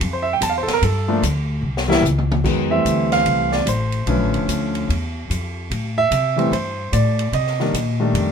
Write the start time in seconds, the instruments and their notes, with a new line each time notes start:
0.00 upright bass F2, kick, ride
0.13 grand piano C5
0.23 grand piano E5
0.33 grand piano G5
0.41 upright bass E2, grand piano A5, kick, hi-hat pedal, ride
0.50 grand piano F5
0.58 grand piano C5
0.63 grand piano A4
0.67 muted upright bass stroke, snare, ride
0.73 grand piano A#4
0.82 upright bass G2, grand piano A4, kick, ride
1.08 grand piano F3 A3 A#3 D4
1.23 upright bass D2, kick, hi-hat pedal, ride
1.62 upright bass C2
1.77 snare
1.88 grand piano E3 G3 A#3 E4, snare
2.02 upright bass C#2, hi-hat pedal, mid tom
2.18 mid tom
2.32 mid tom
2.44 upright bass F2, grand piano D#3 F#3 G#3 B3, kick, crash
2.70 grand piano E3 G3 A3 C4 E5
2.85 upright bass D2, kick, hi-hat pedal, ride
3.12 grand piano F5, snare, ride
3.25 upright bass C2, kick, ride
3.52 grand piano D5, snare
3.66 upright bass A1, grand piano C5, kick, hi-hat pedal, ride
3.92 ride
4.06 upright bass B1, grand piano D3 F3 A3 C#4 B4, kick, ride
4.20 upright bass A1
4.34 upright bass F1, ride
4.48 upright bass D2, kick, hi-hat pedal, ride
4.75 ride
4.89 upright bass E2, kick, ride
5.30 upright bass F2, kick, hi-hat pedal, ride
5.70 upright bass A2, kick, ride
5.98 grand piano E5
6.11 upright bass C3, kick, hi-hat pedal, ride
6.36 grand piano E3 G3 A3 C4, ride
6.52 upright bass G2, grand piano C5, kick, ride
6.92 upright bass A2, grand piano D5, kick, hi-hat pedal, ride
7.19 ride
7.32 upright bass C3, grand piano D#5, kick, ride
7.47 snare
7.60 grand piano D#3 G3 A#3 D4, snare
7.73 upright bass A#2, kick, hi-hat pedal, ride
8.00 grand piano D#3 G3 A3 D4
8.13 upright bass F2, kick, ride